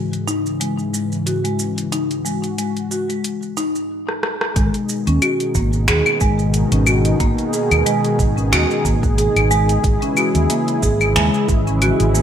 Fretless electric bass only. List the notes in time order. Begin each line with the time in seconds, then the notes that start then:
4.56 G#1
5.07 D#2
5.55 G#1
5.88 D#2
6.21 G#1
6.72 G#1
7.20 G#1
7.71 D#2
8.19 G#1
8.52 D#2
8.85 G#1
9.36 G#1
9.84 G#1
10.35 D#2
10.83 G#1
11.16 D#2
11.49 G#1
12.00 G#1